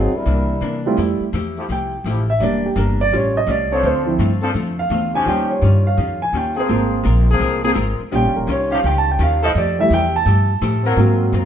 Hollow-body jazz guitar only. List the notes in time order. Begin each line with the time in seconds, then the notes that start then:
Already playing: G#2 F#3 C4 F4
0.26 C3 E3 A#3 D4
0.61 C3 E3 A#3 D4
0.97 F3 A3 E4 G4
1.33 F3 A3 E4 G4
1.69 F3 A3 E4 G4
2.06 F3 A3 E4 G4
2.41 E3 A#3 D4 G4
2.76 E3 A#3 D4 G4
3.11 A2 G3 C#4 F4
3.47 A2 G3 C#4 F4
3.83 D3 A3 C4 F4
4.19 D3 A3 C4 F4
4.54 D3 A3 C4 F4
4.90 D3 A3 C4 F4
5.26 D#3 G3 C#4 F4
5.62 D#3 G3 C#4 F4
5.97 D#3 G3 C#4 F4
6.34 D#3 G3 C#4 F4
6.68 G#3 C4 F4 A#4
7.04 G#3 C4 F4 A#4
7.39 G#3 C4 F4 A#4
7.74 G#3 C4 F4 A#4
8.12 D#3 C#4 F4 G4
8.48 D#3 C#4 F4 G4
8.85 D#3 C#4 F4 G4
9.19 D#3 C#4 F4 G4
9.56 F3 A3 E4 G4
9.92 F3 A3 E4 G4
10.26 F3 A3 E4 G4
10.62 F3 A3 E4 G4
10.98 G#2 F#3 C4 F4
11.33 G#2 F#3 C4 F4